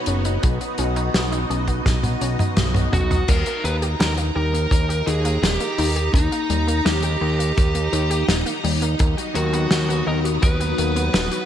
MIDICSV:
0, 0, Header, 1, 6, 480
1, 0, Start_track
1, 0, Tempo, 714286
1, 288, Time_signature, 4, 2, 24, 8
1, 7696, End_track
2, 0, Start_track
2, 0, Title_t, "Lead electric guitar"
2, 0, Program_c, 0, 29
2, 1969, Note_on_c, 0, 66, 96
2, 2211, Note_on_c, 0, 70, 111
2, 2215, Note_off_c, 0, 66, 0
2, 2447, Note_off_c, 0, 70, 0
2, 2450, Note_on_c, 0, 71, 109
2, 2514, Note_off_c, 0, 71, 0
2, 2689, Note_on_c, 0, 70, 104
2, 2754, Note_off_c, 0, 70, 0
2, 2929, Note_on_c, 0, 70, 114
2, 3408, Note_on_c, 0, 68, 94
2, 3422, Note_off_c, 0, 70, 0
2, 3646, Note_off_c, 0, 68, 0
2, 3649, Note_on_c, 0, 67, 97
2, 4101, Note_off_c, 0, 67, 0
2, 4126, Note_on_c, 0, 63, 93
2, 4580, Note_off_c, 0, 63, 0
2, 4607, Note_on_c, 0, 67, 83
2, 5540, Note_off_c, 0, 67, 0
2, 6286, Note_on_c, 0, 66, 87
2, 6740, Note_off_c, 0, 66, 0
2, 6765, Note_on_c, 0, 70, 93
2, 6830, Note_off_c, 0, 70, 0
2, 7005, Note_on_c, 0, 71, 99
2, 7476, Note_off_c, 0, 71, 0
2, 7484, Note_on_c, 0, 71, 91
2, 7696, Note_off_c, 0, 71, 0
2, 7696, End_track
3, 0, Start_track
3, 0, Title_t, "String machine"
3, 0, Program_c, 1, 50
3, 0, Note_on_c, 1, 59, 79
3, 0, Note_on_c, 1, 63, 70
3, 0, Note_on_c, 1, 66, 68
3, 0, Note_on_c, 1, 73, 85
3, 269, Note_off_c, 1, 73, 0
3, 286, Note_on_c, 1, 75, 86
3, 2181, Note_off_c, 1, 59, 0
3, 2181, Note_off_c, 1, 63, 0
3, 2181, Note_off_c, 1, 66, 0
3, 2188, Note_off_c, 1, 75, 0
3, 2208, Note_on_c, 1, 82, 88
3, 2209, Note_on_c, 1, 63, 74
3, 6021, Note_off_c, 1, 82, 0
3, 6046, Note_on_c, 1, 75, 85
3, 6047, Note_on_c, 1, 54, 76
3, 6048, Note_on_c, 1, 59, 73
3, 7696, Note_off_c, 1, 54, 0
3, 7696, Note_off_c, 1, 59, 0
3, 7696, Note_off_c, 1, 63, 0
3, 7696, Note_off_c, 1, 75, 0
3, 7696, End_track
4, 0, Start_track
4, 0, Title_t, "Synth arpeggio sound"
4, 0, Program_c, 2, 84
4, 49, Note_on_c, 2, 61, 78
4, 151, Note_off_c, 2, 61, 0
4, 169, Note_on_c, 2, 63, 76
4, 271, Note_off_c, 2, 63, 0
4, 288, Note_on_c, 2, 54, 84
4, 402, Note_off_c, 2, 54, 0
4, 408, Note_on_c, 2, 59, 73
4, 510, Note_off_c, 2, 59, 0
4, 528, Note_on_c, 2, 61, 76
4, 630, Note_off_c, 2, 61, 0
4, 647, Note_on_c, 2, 63, 100
4, 749, Note_off_c, 2, 63, 0
4, 768, Note_on_c, 2, 66, 84
4, 829, Note_off_c, 2, 66, 0
4, 887, Note_on_c, 2, 63, 76
4, 990, Note_off_c, 2, 63, 0
4, 1008, Note_on_c, 2, 61, 81
4, 1110, Note_off_c, 2, 61, 0
4, 1128, Note_on_c, 2, 59, 98
4, 1230, Note_off_c, 2, 59, 0
4, 1248, Note_on_c, 2, 54, 82
4, 1350, Note_off_c, 2, 54, 0
4, 1367, Note_on_c, 2, 59, 78
4, 1470, Note_off_c, 2, 59, 0
4, 1488, Note_on_c, 2, 61, 75
4, 1590, Note_off_c, 2, 61, 0
4, 1608, Note_on_c, 2, 63, 78
4, 1710, Note_off_c, 2, 63, 0
4, 1729, Note_on_c, 2, 54, 84
4, 1842, Note_off_c, 2, 54, 0
4, 1849, Note_on_c, 2, 59, 76
4, 1950, Note_off_c, 2, 59, 0
4, 1969, Note_on_c, 2, 61, 78
4, 2071, Note_off_c, 2, 61, 0
4, 2089, Note_on_c, 2, 63, 102
4, 2190, Note_off_c, 2, 63, 0
4, 2209, Note_on_c, 2, 55, 88
4, 2311, Note_off_c, 2, 55, 0
4, 2329, Note_on_c, 2, 58, 74
4, 2430, Note_off_c, 2, 58, 0
4, 2449, Note_on_c, 2, 63, 78
4, 2509, Note_off_c, 2, 63, 0
4, 2569, Note_on_c, 2, 67, 78
4, 2670, Note_off_c, 2, 67, 0
4, 2688, Note_on_c, 2, 63, 83
4, 2790, Note_off_c, 2, 63, 0
4, 2807, Note_on_c, 2, 58, 78
4, 2909, Note_off_c, 2, 58, 0
4, 2926, Note_on_c, 2, 55, 79
4, 3029, Note_off_c, 2, 55, 0
4, 3046, Note_on_c, 2, 58, 73
4, 3161, Note_off_c, 2, 58, 0
4, 3167, Note_on_c, 2, 63, 82
4, 3269, Note_off_c, 2, 63, 0
4, 3285, Note_on_c, 2, 67, 79
4, 3389, Note_off_c, 2, 67, 0
4, 3407, Note_on_c, 2, 63, 75
4, 3468, Note_off_c, 2, 63, 0
4, 3526, Note_on_c, 2, 58, 80
4, 3629, Note_off_c, 2, 58, 0
4, 3647, Note_on_c, 2, 55, 88
4, 3749, Note_off_c, 2, 55, 0
4, 3766, Note_on_c, 2, 58, 78
4, 3869, Note_off_c, 2, 58, 0
4, 3886, Note_on_c, 2, 63, 80
4, 3948, Note_off_c, 2, 63, 0
4, 4005, Note_on_c, 2, 67, 77
4, 4109, Note_off_c, 2, 67, 0
4, 4124, Note_on_c, 2, 63, 85
4, 4228, Note_off_c, 2, 63, 0
4, 4245, Note_on_c, 2, 58, 76
4, 4349, Note_off_c, 2, 58, 0
4, 4366, Note_on_c, 2, 55, 79
4, 4469, Note_off_c, 2, 55, 0
4, 4485, Note_on_c, 2, 58, 75
4, 4600, Note_off_c, 2, 58, 0
4, 4606, Note_on_c, 2, 63, 81
4, 4709, Note_off_c, 2, 63, 0
4, 4726, Note_on_c, 2, 67, 81
4, 4829, Note_off_c, 2, 67, 0
4, 4845, Note_on_c, 2, 63, 78
4, 4908, Note_off_c, 2, 63, 0
4, 4966, Note_on_c, 2, 58, 77
4, 5069, Note_off_c, 2, 58, 0
4, 5087, Note_on_c, 2, 55, 86
4, 5189, Note_off_c, 2, 55, 0
4, 5206, Note_on_c, 2, 58, 83
4, 5309, Note_off_c, 2, 58, 0
4, 5327, Note_on_c, 2, 63, 77
4, 5388, Note_off_c, 2, 63, 0
4, 5445, Note_on_c, 2, 67, 79
4, 5549, Note_off_c, 2, 67, 0
4, 5567, Note_on_c, 2, 63, 87
4, 5669, Note_off_c, 2, 63, 0
4, 5686, Note_on_c, 2, 58, 79
4, 5789, Note_off_c, 2, 58, 0
4, 5805, Note_on_c, 2, 55, 81
4, 5908, Note_off_c, 2, 55, 0
4, 5926, Note_on_c, 2, 58, 77
4, 6041, Note_off_c, 2, 58, 0
4, 6046, Note_on_c, 2, 63, 83
4, 6149, Note_off_c, 2, 63, 0
4, 6165, Note_on_c, 2, 66, 74
4, 6268, Note_off_c, 2, 66, 0
4, 6286, Note_on_c, 2, 63, 79
4, 6348, Note_off_c, 2, 63, 0
4, 6406, Note_on_c, 2, 59, 79
4, 6509, Note_off_c, 2, 59, 0
4, 6525, Note_on_c, 2, 54, 86
4, 6628, Note_off_c, 2, 54, 0
4, 6645, Note_on_c, 2, 59, 79
4, 6748, Note_off_c, 2, 59, 0
4, 6766, Note_on_c, 2, 63, 79
4, 6828, Note_off_c, 2, 63, 0
4, 6886, Note_on_c, 2, 66, 76
4, 6989, Note_off_c, 2, 66, 0
4, 7005, Note_on_c, 2, 63, 86
4, 7109, Note_off_c, 2, 63, 0
4, 7125, Note_on_c, 2, 59, 83
4, 7228, Note_off_c, 2, 59, 0
4, 7246, Note_on_c, 2, 54, 78
4, 7349, Note_off_c, 2, 54, 0
4, 7366, Note_on_c, 2, 59, 81
4, 7481, Note_off_c, 2, 59, 0
4, 7486, Note_on_c, 2, 63, 89
4, 7589, Note_off_c, 2, 63, 0
4, 7606, Note_on_c, 2, 66, 78
4, 7696, Note_off_c, 2, 66, 0
4, 7696, End_track
5, 0, Start_track
5, 0, Title_t, "Analog synth bass"
5, 0, Program_c, 3, 38
5, 48, Note_on_c, 3, 30, 91
5, 258, Note_off_c, 3, 30, 0
5, 293, Note_on_c, 3, 35, 99
5, 395, Note_off_c, 3, 35, 0
5, 529, Note_on_c, 3, 35, 97
5, 738, Note_off_c, 3, 35, 0
5, 769, Note_on_c, 3, 35, 91
5, 978, Note_off_c, 3, 35, 0
5, 1009, Note_on_c, 3, 35, 93
5, 1218, Note_off_c, 3, 35, 0
5, 1249, Note_on_c, 3, 35, 89
5, 1458, Note_off_c, 3, 35, 0
5, 1489, Note_on_c, 3, 35, 81
5, 1593, Note_off_c, 3, 35, 0
5, 1729, Note_on_c, 3, 35, 92
5, 1938, Note_off_c, 3, 35, 0
5, 1968, Note_on_c, 3, 35, 94
5, 2178, Note_off_c, 3, 35, 0
5, 2209, Note_on_c, 3, 39, 103
5, 2313, Note_off_c, 3, 39, 0
5, 2448, Note_on_c, 3, 39, 97
5, 2658, Note_off_c, 3, 39, 0
5, 2689, Note_on_c, 3, 39, 94
5, 2898, Note_off_c, 3, 39, 0
5, 2929, Note_on_c, 3, 39, 97
5, 3138, Note_off_c, 3, 39, 0
5, 3167, Note_on_c, 3, 39, 86
5, 3377, Note_off_c, 3, 39, 0
5, 3408, Note_on_c, 3, 39, 103
5, 3618, Note_off_c, 3, 39, 0
5, 3648, Note_on_c, 3, 27, 98
5, 3753, Note_off_c, 3, 27, 0
5, 3888, Note_on_c, 3, 39, 102
5, 4098, Note_off_c, 3, 39, 0
5, 4125, Note_on_c, 3, 39, 102
5, 4231, Note_off_c, 3, 39, 0
5, 4367, Note_on_c, 3, 39, 98
5, 4577, Note_off_c, 3, 39, 0
5, 4608, Note_on_c, 3, 39, 94
5, 4818, Note_off_c, 3, 39, 0
5, 4847, Note_on_c, 3, 39, 96
5, 5057, Note_off_c, 3, 39, 0
5, 5092, Note_on_c, 3, 39, 92
5, 5300, Note_off_c, 3, 39, 0
5, 5327, Note_on_c, 3, 39, 100
5, 5537, Note_off_c, 3, 39, 0
5, 5567, Note_on_c, 3, 27, 93
5, 5672, Note_off_c, 3, 27, 0
5, 5808, Note_on_c, 3, 39, 104
5, 6018, Note_off_c, 3, 39, 0
5, 6049, Note_on_c, 3, 39, 103
5, 6153, Note_off_c, 3, 39, 0
5, 6288, Note_on_c, 3, 39, 98
5, 6497, Note_off_c, 3, 39, 0
5, 6527, Note_on_c, 3, 39, 91
5, 6737, Note_off_c, 3, 39, 0
5, 6767, Note_on_c, 3, 39, 94
5, 6977, Note_off_c, 3, 39, 0
5, 7009, Note_on_c, 3, 39, 91
5, 7218, Note_off_c, 3, 39, 0
5, 7248, Note_on_c, 3, 39, 101
5, 7458, Note_off_c, 3, 39, 0
5, 7488, Note_on_c, 3, 27, 98
5, 7593, Note_off_c, 3, 27, 0
5, 7696, End_track
6, 0, Start_track
6, 0, Title_t, "Drums"
6, 41, Note_on_c, 9, 42, 76
6, 108, Note_off_c, 9, 42, 0
6, 167, Note_on_c, 9, 42, 58
6, 234, Note_off_c, 9, 42, 0
6, 289, Note_on_c, 9, 42, 86
6, 292, Note_on_c, 9, 36, 115
6, 356, Note_off_c, 9, 42, 0
6, 359, Note_off_c, 9, 36, 0
6, 409, Note_on_c, 9, 42, 50
6, 476, Note_off_c, 9, 42, 0
6, 523, Note_on_c, 9, 42, 76
6, 590, Note_off_c, 9, 42, 0
6, 646, Note_on_c, 9, 42, 50
6, 714, Note_off_c, 9, 42, 0
6, 769, Note_on_c, 9, 38, 116
6, 771, Note_on_c, 9, 42, 98
6, 836, Note_off_c, 9, 38, 0
6, 838, Note_off_c, 9, 42, 0
6, 890, Note_on_c, 9, 42, 55
6, 957, Note_off_c, 9, 42, 0
6, 1013, Note_on_c, 9, 42, 49
6, 1080, Note_off_c, 9, 42, 0
6, 1126, Note_on_c, 9, 36, 60
6, 1127, Note_on_c, 9, 42, 56
6, 1193, Note_off_c, 9, 36, 0
6, 1194, Note_off_c, 9, 42, 0
6, 1249, Note_on_c, 9, 36, 119
6, 1250, Note_on_c, 9, 38, 56
6, 1252, Note_on_c, 9, 48, 55
6, 1253, Note_on_c, 9, 42, 90
6, 1317, Note_off_c, 9, 36, 0
6, 1317, Note_off_c, 9, 38, 0
6, 1319, Note_off_c, 9, 48, 0
6, 1321, Note_off_c, 9, 42, 0
6, 1367, Note_on_c, 9, 48, 54
6, 1370, Note_on_c, 9, 42, 52
6, 1434, Note_off_c, 9, 48, 0
6, 1437, Note_off_c, 9, 42, 0
6, 1487, Note_on_c, 9, 42, 77
6, 1555, Note_off_c, 9, 42, 0
6, 1608, Note_on_c, 9, 47, 66
6, 1613, Note_on_c, 9, 42, 53
6, 1675, Note_off_c, 9, 47, 0
6, 1680, Note_off_c, 9, 42, 0
6, 1725, Note_on_c, 9, 42, 95
6, 1726, Note_on_c, 9, 47, 77
6, 1727, Note_on_c, 9, 38, 115
6, 1792, Note_off_c, 9, 42, 0
6, 1793, Note_off_c, 9, 47, 0
6, 1794, Note_off_c, 9, 38, 0
6, 1845, Note_on_c, 9, 47, 76
6, 1854, Note_on_c, 9, 42, 57
6, 1912, Note_off_c, 9, 47, 0
6, 1921, Note_off_c, 9, 42, 0
6, 1968, Note_on_c, 9, 36, 55
6, 1969, Note_on_c, 9, 45, 95
6, 1975, Note_on_c, 9, 42, 78
6, 2035, Note_off_c, 9, 36, 0
6, 2037, Note_off_c, 9, 45, 0
6, 2042, Note_off_c, 9, 42, 0
6, 2089, Note_on_c, 9, 45, 76
6, 2092, Note_on_c, 9, 42, 58
6, 2157, Note_off_c, 9, 45, 0
6, 2159, Note_off_c, 9, 42, 0
6, 2204, Note_on_c, 9, 49, 92
6, 2208, Note_on_c, 9, 36, 126
6, 2210, Note_on_c, 9, 42, 104
6, 2272, Note_off_c, 9, 49, 0
6, 2276, Note_off_c, 9, 36, 0
6, 2277, Note_off_c, 9, 42, 0
6, 2325, Note_on_c, 9, 42, 61
6, 2392, Note_off_c, 9, 42, 0
6, 2452, Note_on_c, 9, 42, 69
6, 2519, Note_off_c, 9, 42, 0
6, 2569, Note_on_c, 9, 42, 57
6, 2636, Note_off_c, 9, 42, 0
6, 2690, Note_on_c, 9, 42, 106
6, 2693, Note_on_c, 9, 38, 123
6, 2757, Note_off_c, 9, 42, 0
6, 2760, Note_off_c, 9, 38, 0
6, 2805, Note_on_c, 9, 42, 63
6, 2873, Note_off_c, 9, 42, 0
6, 3054, Note_on_c, 9, 42, 54
6, 3122, Note_off_c, 9, 42, 0
6, 3167, Note_on_c, 9, 36, 118
6, 3173, Note_on_c, 9, 42, 101
6, 3234, Note_off_c, 9, 36, 0
6, 3240, Note_off_c, 9, 42, 0
6, 3293, Note_on_c, 9, 42, 54
6, 3360, Note_off_c, 9, 42, 0
6, 3411, Note_on_c, 9, 42, 76
6, 3478, Note_off_c, 9, 42, 0
6, 3528, Note_on_c, 9, 42, 60
6, 3595, Note_off_c, 9, 42, 0
6, 3652, Note_on_c, 9, 42, 109
6, 3653, Note_on_c, 9, 38, 114
6, 3720, Note_off_c, 9, 38, 0
6, 3720, Note_off_c, 9, 42, 0
6, 3765, Note_on_c, 9, 42, 54
6, 3832, Note_off_c, 9, 42, 0
6, 3886, Note_on_c, 9, 46, 97
6, 3954, Note_off_c, 9, 46, 0
6, 4006, Note_on_c, 9, 42, 58
6, 4073, Note_off_c, 9, 42, 0
6, 4125, Note_on_c, 9, 36, 127
6, 4135, Note_on_c, 9, 42, 95
6, 4192, Note_off_c, 9, 36, 0
6, 4202, Note_off_c, 9, 42, 0
6, 4249, Note_on_c, 9, 42, 54
6, 4316, Note_off_c, 9, 42, 0
6, 4367, Note_on_c, 9, 42, 75
6, 4435, Note_off_c, 9, 42, 0
6, 4491, Note_on_c, 9, 42, 52
6, 4559, Note_off_c, 9, 42, 0
6, 4609, Note_on_c, 9, 38, 127
6, 4610, Note_on_c, 9, 42, 107
6, 4677, Note_off_c, 9, 38, 0
6, 4677, Note_off_c, 9, 42, 0
6, 4721, Note_on_c, 9, 42, 63
6, 4788, Note_off_c, 9, 42, 0
6, 4974, Note_on_c, 9, 42, 62
6, 5041, Note_off_c, 9, 42, 0
6, 5091, Note_on_c, 9, 42, 90
6, 5092, Note_on_c, 9, 36, 123
6, 5158, Note_off_c, 9, 42, 0
6, 5159, Note_off_c, 9, 36, 0
6, 5207, Note_on_c, 9, 42, 55
6, 5274, Note_off_c, 9, 42, 0
6, 5329, Note_on_c, 9, 42, 78
6, 5396, Note_off_c, 9, 42, 0
6, 5449, Note_on_c, 9, 42, 64
6, 5516, Note_off_c, 9, 42, 0
6, 5568, Note_on_c, 9, 38, 115
6, 5570, Note_on_c, 9, 42, 99
6, 5635, Note_off_c, 9, 38, 0
6, 5637, Note_off_c, 9, 42, 0
6, 5687, Note_on_c, 9, 42, 56
6, 5754, Note_off_c, 9, 42, 0
6, 5809, Note_on_c, 9, 46, 94
6, 5876, Note_off_c, 9, 46, 0
6, 5927, Note_on_c, 9, 42, 56
6, 5994, Note_off_c, 9, 42, 0
6, 6042, Note_on_c, 9, 42, 93
6, 6048, Note_on_c, 9, 36, 127
6, 6109, Note_off_c, 9, 42, 0
6, 6116, Note_off_c, 9, 36, 0
6, 6170, Note_on_c, 9, 42, 55
6, 6237, Note_off_c, 9, 42, 0
6, 6285, Note_on_c, 9, 42, 82
6, 6352, Note_off_c, 9, 42, 0
6, 6407, Note_on_c, 9, 42, 50
6, 6474, Note_off_c, 9, 42, 0
6, 6523, Note_on_c, 9, 38, 123
6, 6527, Note_on_c, 9, 42, 98
6, 6590, Note_off_c, 9, 38, 0
6, 6594, Note_off_c, 9, 42, 0
6, 6653, Note_on_c, 9, 42, 58
6, 6720, Note_off_c, 9, 42, 0
6, 6890, Note_on_c, 9, 42, 57
6, 6957, Note_off_c, 9, 42, 0
6, 7006, Note_on_c, 9, 42, 92
6, 7009, Note_on_c, 9, 36, 127
6, 7073, Note_off_c, 9, 42, 0
6, 7076, Note_off_c, 9, 36, 0
6, 7127, Note_on_c, 9, 42, 52
6, 7194, Note_off_c, 9, 42, 0
6, 7247, Note_on_c, 9, 42, 81
6, 7314, Note_off_c, 9, 42, 0
6, 7367, Note_on_c, 9, 42, 54
6, 7435, Note_off_c, 9, 42, 0
6, 7485, Note_on_c, 9, 42, 93
6, 7487, Note_on_c, 9, 38, 127
6, 7552, Note_off_c, 9, 42, 0
6, 7554, Note_off_c, 9, 38, 0
6, 7604, Note_on_c, 9, 42, 62
6, 7671, Note_off_c, 9, 42, 0
6, 7696, End_track
0, 0, End_of_file